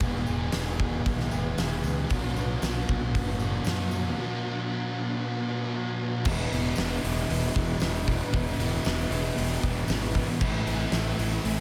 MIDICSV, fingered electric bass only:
0, 0, Header, 1, 2, 480
1, 0, Start_track
1, 0, Tempo, 519931
1, 11, Time_signature, 4, 2, 24, 8
1, 10711, End_track
2, 0, Start_track
2, 0, Title_t, "Fingered electric bass"
2, 0, Program_c, 0, 33
2, 3, Note_on_c, 0, 28, 91
2, 216, Note_off_c, 0, 28, 0
2, 254, Note_on_c, 0, 28, 85
2, 463, Note_off_c, 0, 28, 0
2, 500, Note_on_c, 0, 28, 84
2, 916, Note_off_c, 0, 28, 0
2, 981, Note_on_c, 0, 35, 93
2, 1187, Note_off_c, 0, 35, 0
2, 1220, Note_on_c, 0, 28, 84
2, 1427, Note_off_c, 0, 28, 0
2, 1451, Note_on_c, 0, 28, 89
2, 1663, Note_off_c, 0, 28, 0
2, 1697, Note_on_c, 0, 37, 95
2, 1906, Note_off_c, 0, 37, 0
2, 1940, Note_on_c, 0, 35, 89
2, 2148, Note_off_c, 0, 35, 0
2, 2179, Note_on_c, 0, 35, 90
2, 2388, Note_off_c, 0, 35, 0
2, 2421, Note_on_c, 0, 35, 82
2, 2629, Note_off_c, 0, 35, 0
2, 2664, Note_on_c, 0, 35, 85
2, 2871, Note_off_c, 0, 35, 0
2, 2907, Note_on_c, 0, 30, 89
2, 3323, Note_off_c, 0, 30, 0
2, 3381, Note_on_c, 0, 42, 85
2, 3799, Note_off_c, 0, 42, 0
2, 5775, Note_on_c, 0, 28, 98
2, 5955, Note_off_c, 0, 28, 0
2, 6014, Note_on_c, 0, 28, 93
2, 6194, Note_off_c, 0, 28, 0
2, 6254, Note_on_c, 0, 28, 91
2, 6433, Note_off_c, 0, 28, 0
2, 6496, Note_on_c, 0, 28, 89
2, 6675, Note_off_c, 0, 28, 0
2, 6736, Note_on_c, 0, 28, 96
2, 6914, Note_off_c, 0, 28, 0
2, 6975, Note_on_c, 0, 28, 90
2, 7153, Note_off_c, 0, 28, 0
2, 7204, Note_on_c, 0, 28, 88
2, 7562, Note_off_c, 0, 28, 0
2, 7693, Note_on_c, 0, 28, 97
2, 7871, Note_off_c, 0, 28, 0
2, 7918, Note_on_c, 0, 28, 91
2, 8102, Note_off_c, 0, 28, 0
2, 8178, Note_on_c, 0, 28, 97
2, 8354, Note_off_c, 0, 28, 0
2, 8397, Note_on_c, 0, 28, 90
2, 8581, Note_off_c, 0, 28, 0
2, 8659, Note_on_c, 0, 28, 99
2, 8834, Note_off_c, 0, 28, 0
2, 8895, Note_on_c, 0, 28, 85
2, 9071, Note_off_c, 0, 28, 0
2, 9133, Note_on_c, 0, 32, 94
2, 9486, Note_off_c, 0, 32, 0
2, 9613, Note_on_c, 0, 33, 95
2, 9789, Note_off_c, 0, 33, 0
2, 9843, Note_on_c, 0, 33, 100
2, 10023, Note_off_c, 0, 33, 0
2, 10080, Note_on_c, 0, 33, 102
2, 10260, Note_off_c, 0, 33, 0
2, 10326, Note_on_c, 0, 33, 94
2, 10504, Note_off_c, 0, 33, 0
2, 10567, Note_on_c, 0, 33, 95
2, 10711, Note_off_c, 0, 33, 0
2, 10711, End_track
0, 0, End_of_file